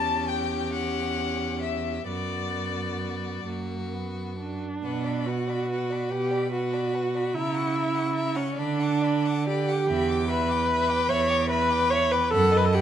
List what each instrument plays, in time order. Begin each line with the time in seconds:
Already playing: cello E2, viola C#4, violin G4 A5
0.28 violin G5
0.73 violin F#5
1.62 violin E5
2.08 cello F#2, viola B3, violin F#4 D5
3.46 cello F#2, viola A#3, violin F#4
3.93 viola B3
4.39 viola D4
4.84 cello B2, violin B4 F#5
5.05 violin D5 B5
5.26 viola F#4, violin B4 F#5
5.48 violin D5 B5
5.68 violin B4 F#5
5.90 violin D5 B5
6.10 cello B2, viola G4, violin B4 F#5
6.31 violin D5 B5
6.52 viola F#4, violin B4 F#5
6.74 violin D5 B5
6.94 violin B4 F#5
7.15 violin D5 B5
7.34 cello C#3, viola E4, violin E5 A#5
7.54 violin F#5 C#6
7.76 violin E5 A#5
7.95 violin F#5 C#6
8.15 violin E5 A#5
8.35 viola C#4, violin F#5 C#6
8.55 cello D3, viola D4, violin D5 B5
8.80 violin F#5 D6
9.02 violin D5 B5
9.24 violin F#5 D6
9.46 viola G4, violin D5 B5
9.69 violin F#5 D6
9.88 cello E2, violin E5 B5
10.09 violin G5 D6
10.29 viola B4, violin E5 B5
10.48 violin G5 D6
10.69 violin E5 B5
10.88 violin G5 D6
11.06 cello E2, viola C#5, violin E5 B5
11.28 violin G5 D6
11.48 viola B4, violin E5 B5
11.70 violin G5 D6
11.90 viola C#5, violin E5 B5
12.10 viola B4, violin G5 D6
12.31 cello F#2, viola A4, violin F#5 B5
12.51 violin D#5 A5
12.57 viola B4
12.65 viola A4
12.73 viola G4, violin F#5 B5